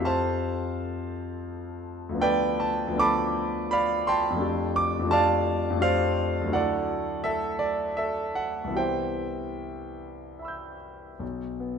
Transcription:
0.00 2.12 F2 medium
0.00 2.10 F3 soft
0.00 2.14 C4 soft
0.00 2.16 G4 soft
0.00 2.17 A4 soft
0.05 1.13 C5 medium
0.05 1.12 F5 medium
0.05 1.16 A5 loud
2.09 2.85 D2 medium
2.09 2.88 F3 soft
2.14 2.91 B3 soft
2.14 2.94 D4 soft
2.20 2.96 A4 soft
2.20 2.58 B4 medium
2.20 2.59 D5 medium
2.20 2.61 G5 loud
2.60 2.99 A5 medium
2.87 4.32 D2 medium
2.87 4.31 F3 soft
2.93 4.35 B3 soft
2.93 4.37 D4 soft
2.98 4.38 A4 medium
2.98 3.69 A5 medium
2.98 3.68 B5 medium
2.98 3.72 D6 loud
3.71 4.05 D5 medium
3.71 4.06 F5 medium
3.71 4.07 B5 loud
4.07 4.75 G5 medium
4.07 4.75 A5 medium
4.07 4.78 C6 loud
4.30 4.98 F2 medium
4.30 5.00 F3 soft
4.36 5.03 A3 soft
4.36 5.05 D4 soft
4.42 5.09 G4 soft
4.76 5.12 D6 loud
4.99 5.69 F2 medium
4.99 5.71 F3 medium
5.05 5.74 A3 medium
5.05 5.77 D4 medium
5.10 5.79 G4 soft
5.10 5.79 D5 medium
5.10 5.79 F5 medium
5.10 5.82 A5 loud
5.70 6.45 F2 medium
5.70 6.46 F3 soft
5.76 6.45 A3 medium
5.76 6.48 D4 medium
5.81 6.50 G4 medium
5.81 6.50 C5 medium
5.81 6.50 D5 medium
5.81 6.53 F5 loud
6.41 8.68 D2 medium
6.41 8.70 F#3 soft
6.47 8.71 A3 soft
6.47 8.72 D4 soft
6.52 8.71 E4 soft
6.52 7.20 A4 medium
6.52 7.20 D5 medium
6.52 7.24 F#5 loud
7.24 7.58 A4 medium
7.24 7.60 E5 loud
7.59 7.97 D5 medium
7.97 8.35 A4 medium
7.97 8.37 E5 medium
8.35 8.78 F#5 medium
8.64 11.10 C2 soft
8.64 11.12 E3 soft
8.70 11.13 B3 soft
8.70 11.14 E4 soft
8.76 11.16 G4 soft
8.76 10.76 C5 medium
8.76 10.38 E5 medium
8.76 10.80 G5 medium
10.39 11.17 E5 soft
10.39 11.18 B5 soft
10.45 11.20 E6 soft
10.45 11.21 G6 soft
11.19 11.79 B1 soft
11.60 11.79 B3 soft

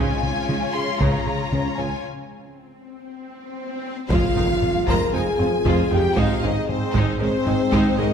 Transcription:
0.00 0.12 C#2 medium
0.00 0.13 C#3 loud
0.00 0.21 C#3 medium
0.00 0.16 F3 medium
0.00 2.04 G#3 medium
0.00 0.16 C#4 medium
0.00 2.00 C#4 medium
0.00 2.04 C#4 medium
0.00 2.00 F4 medium
0.00 2.04 F4 medium
0.00 2.04 G#4 medium
0.00 2.00 C#5 medium
0.00 0.73 G#5 loud
0.23 0.38 C#2 medium
0.23 taiko mid medium
0.48 0.64 C#2 medium
0.48 0.57 C#2 medium
0.48 0.57 C#3 medium
0.48 0.56 F3 soft
0.48 0.64 C#4 medium
0.48 taiko mid medium
0.73 0.90 C#3 medium
0.73 1.00 C6 medium
0.99 1.08 C#2 medium
0.99 1.16 C#2 medium
0.99 1.24 C#3 medium
0.99 1.08 C#3 medium
0.99 1.16 C#3 medium
0.99 1.19 F3 medium
0.99 1.19 C#4 medium
0.99 1.77 A#5 medium
0.99 taiko medium
1.26 1.42 C#3 medium
1.26 taiko mid soft
1.52 1.60 C#2 medium
1.52 1.68 C#2 medium
1.52 1.60 C#3 medium
1.52 1.60 F3 medium
1.52 1.68 C#4 medium
1.52 taiko mid medium
1.78 1.94 C#2 medium
1.78 1.87 C#2 soft
1.78 1.86 C#3 medium
1.78 1.86 G#3 soft
1.78 1.94 C#4 medium
1.78 2.04 G#5 medium
2.04 swell medium
4.10 4.18 F1 medium
4.10 4.26 F2 loud
4.10 4.19 F2 medium
4.10 4.26 F3 medium
4.10 6.14 F3 medium
4.10 4.35 G#3 medium
4.10 8.13 C4 medium
4.10 4.35 F4 medium
4.10 6.14 F4 medium
4.10 4.85 F4 loud
4.10 8.13 G#4 medium
4.10 4.34 C5 medium
4.10 4.84 F5 loud
4.10 taiko loud
4.10 impact medium
4.36 4.44 F1 medium
4.36 4.52 F2 medium
4.36 4.44 F2 medium
4.36 4.44 G#3 medium
4.36 4.44 D#4 medium
4.36 4.52 F4 medium
4.36 4.44 A#4 medium
4.62 4.78 F2 medium
4.62 taiko low-mid medium
4.87 4.96 F1 medium
4.87 4.95 F2 medium
4.87 5.04 F2 loud
4.87 5.03 F3 loud
4.87 5.12 G#3 medium
4.87 5.12 F4 medium
4.87 5.15 A#4 loud
4.87 5.12 C5 medium
4.87 5.14 A#5 medium
4.87 taiko medium
5.13 5.22 F1 medium
5.13 5.21 F2 medium
5.13 5.29 F3 medium
5.13 5.22 G#3 medium
5.13 5.29 C4 medium
5.13 5.22 D#4 medium
5.13 5.92 G#4 medium
5.13 5.22 A#4 medium
5.13 5.90 G#5 medium
5.39 5.47 F1 medium
5.39 5.47 F2 medium
5.39 5.56 F3 medium
5.39 5.47 G#3 medium
5.39 5.55 C4 medium
5.39 5.47 F4 medium
5.39 5.48 C5 medium
5.39 taiko low-mid medium
5.65 5.73 F1 medium
5.65 5.73 F2 medium
5.65 5.81 F2 loud
5.65 5.81 F3 medium
5.65 5.90 G#3 medium
5.65 5.90 F4 loud
5.65 5.90 C5 medium
5.65 taiko medium
5.91 5.99 F1 medium
5.91 6.00 F2 medium
5.91 6.07 F2 medium
5.91 5.99 G#3 medium
5.91 6.00 D#4 medium
5.91 6.07 F4 medium
5.91 6.18 G4 loud
5.91 6.00 A#4 medium
5.91 6.17 G5 medium
6.17 6.25 G#1 medium
6.17 6.25 G#2 medium
6.17 6.33 G#2 loud
6.17 6.33 G#3 medium
6.17 8.13 G#3 medium
6.17 6.42 G#3 medium
6.17 8.13 D#4 medium
6.17 6.42 D#4 medium
6.17 6.43 F4 loud
6.17 6.41 C5 medium
6.17 6.43 F5 medium
6.17 taiko loud
6.42 6.51 G#1 medium
6.42 6.51 G#2 medium
6.42 6.59 G#2 medium
6.42 6.51 G#3 medium
6.42 6.51 C#4 medium
6.42 6.69 D#4 loud
6.42 6.58 G#4 medium
6.42 6.50 A#4 medium
6.42 6.69 D#5 medium
6.68 6.85 G#2 medium
6.68 7.19 C4 loud
6.68 7.20 C5 medium
6.68 taiko low-mid medium
6.94 7.03 G#1 medium
6.94 7.02 G#2 medium
6.94 7.11 G#2 medium
6.94 7.10 G#3 loud
6.94 7.19 G#3 medium
6.94 7.19 D#4 medium
6.94 7.19 C5 medium
6.94 taiko medium
7.19 7.29 G#1 medium
7.19 7.28 G#2 medium
7.19 7.28 G#3 medium
7.19 7.37 G#3 medium
7.19 7.97 C4 loud
7.19 7.28 C#4 medium
7.19 7.36 D#4 medium
7.19 7.27 A#4 medium
7.19 7.97 C5 loud
7.46 7.55 G#1 medium
7.46 7.55 G#2 medium
7.46 7.54 G#3 medium
7.46 7.63 G#3 medium
7.46 7.54 D#4 medium
7.46 7.62 D#4 medium
7.46 7.54 C5 medium
7.46 taiko low-mid medium
7.72 7.81 G#1 medium
7.72 7.80 G#2 loud
7.72 7.88 G#2 loud
7.72 7.88 G#3 loud
7.72 7.97 G#3 medium
7.72 7.97 D#4 medium
7.72 7.97 C5 loud
7.72 taiko medium
7.98 8.07 G#1 medium
7.98 8.06 G#2 medium
7.98 8.13 G#2 medium
7.98 8.07 G#3 medium
7.98 8.07 C#4 medium
7.98 8.13 D#4 loud
7.98 8.13 G#4 medium
7.98 8.07 A#4 medium
7.98 8.13 D#5 medium

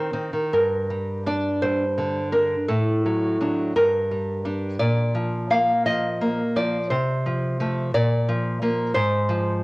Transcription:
0.00 0.10 D#3 soft
0.00 0.11 C4 soft
0.13 0.31 D#3 soft
0.13 0.31 C4 soft
0.33 0.52 D#3 soft
0.53 2.66 G2 soft
0.53 1.23 A#4 soft
0.90 1.47 G3 soft
1.26 1.83 D4 soft
1.26 1.60 D5 medium
1.62 2.19 G3 soft
1.62 2.30 C5 medium
1.98 2.55 D3 soft
2.32 2.69 D4 soft
2.32 2.67 A#4 soft
2.68 3.72 A2 soft
2.68 3.71 A4 medium
3.06 3.39 F#3 soft
3.41 3.72 F#3 soft
3.41 3.72 D4 soft
3.76 4.77 G2 soft
3.76 4.76 A#4 medium
4.11 4.44 G3 soft
4.45 4.77 G3 soft
4.45 4.77 D4 soft
4.79 6.86 A#2 soft
4.79 5.47 D5 medium
5.15 5.71 F3 soft
5.50 6.06 A#3 soft
5.50 5.84 F5 medium
5.86 6.41 F3 soft
5.86 6.53 D#5 medium
6.21 6.77 A#3 soft
6.56 6.91 F3 soft
6.56 6.90 D5 medium
6.90 7.91 C3 soft
6.90 7.90 C5 medium
7.26 7.59 F3 soft
7.60 7.91 F3 soft
7.60 7.91 A3 soft
7.94 8.92 A#2 medium
7.94 8.91 D5 medium
8.29 8.61 F3 soft
8.62 8.92 F3 soft
8.62 8.92 A#3 soft
8.94 9.63 G#2 medium
8.94 9.63 C5 medium
9.29 9.62 F3 soft

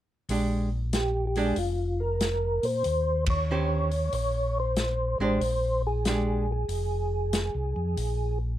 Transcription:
0.29 1.53 A#1 medium
0.29 0.68 G#3 medium
0.29 0.69 D4 medium
0.29 0.69 G4 medium
0.29 open hi-hat soft
0.93 1.25 G4 medium
0.93 snare medium
0.93 closed hi-hat soft
1.27 1.36 G4 medium
1.35 1.55 G#3 medium
1.35 1.56 D4 medium
1.35 1.56 G4 medium
1.35 1.57 G#4 medium
1.35 open hi-hat soft
1.56 2.60 F1 medium
1.56 2.02 F4 medium
1.56 open hi-hat soft
2.00 2.66 A#4 medium
2.20 snare medium
2.20 closed hi-hat soft
2.63 2.83 A#2 medium
2.63 3.25 C5 loud
2.63 open hi-hat soft
2.84 4.09 D#2 medium
2.84 open hi-hat soft
3.26 4.13 C#5 loud
3.26 kick medium
3.26 ride medium
3.51 3.89 D#3 medium
3.51 3.89 C#4 medium
3.51 3.89 G4 medium
3.51 3.89 C5 medium
3.91 open hi-hat soft
4.12 5.16 A#1 medium
4.12 4.58 C#5 medium
4.12 open hi-hat soft
4.60 5.18 C5 medium
4.76 snare medium
4.76 closed hi-hat soft
5.19 5.39 A1 medium
5.19 5.39 G#3 medium
5.19 5.40 D4 medium
5.19 5.40 G4 medium
5.24 5.82 C5 loud
5.40 6.65 A#1 medium
5.40 open hi-hat soft
5.87 6.51 G#4 medium
6.05 6.45 G#3 medium
6.05 6.45 D4 medium
6.05 6.45 G4 medium
6.05 snare medium
6.05 closed hi-hat soft
6.52 8.39 G#4 medium
6.69 7.51 F1 medium
6.69 open hi-hat soft
7.33 snare medium
7.33 closed hi-hat soft
7.55 7.75 C2 medium
7.76 7.96 F2 medium
7.97 8.59 A#1 medium
7.97 open hi-hat soft

